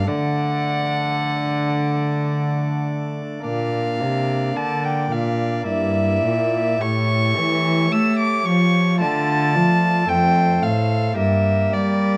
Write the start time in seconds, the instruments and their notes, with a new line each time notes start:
0.03 pipe organ A3 D4 D5
0.07 pipe organ D3, cello D3, violin F#5
3.40 pipe organ A#3 D4 D5
3.45 pipe organ A#2, cello A#2, violin F5
4.00 pipe organ C3, cello C3
4.55 pipe organ D3, cello D3, violin A5
4.84 violin G5
5.10 pipe organ A#2, cello A#2, violin F5
5.62 pipe organ A#3 E4 D5
5.67 pipe organ G2, cello G2, violin E5
6.24 pipe organ A#2, cello A#2
6.77 pipe organ A3 G4 C#5, violin C#6
6.81 cello A2, pipe organ A2
7.37 pipe organ E3, cello E3
7.91 cello A3, pipe organ A3, violin E6
8.19 violin D6
8.46 cello F3, pipe organ F3, violin C#6
8.97 pipe organ A3 F4 D5, violin A5
9.01 cello D3, pipe organ D3
9.55 pipe organ F3, cello F3
10.04 pipe organ A3 A4 C5
10.09 pipe organ F2, cello F2, violin G5
10.62 pipe organ A2, cello A2, violin F5
11.13 pipe organ A#3 G4 A#4
11.17 pipe organ G2, cello G2, violin E5
11.72 pipe organ G3, cello G3, violin D5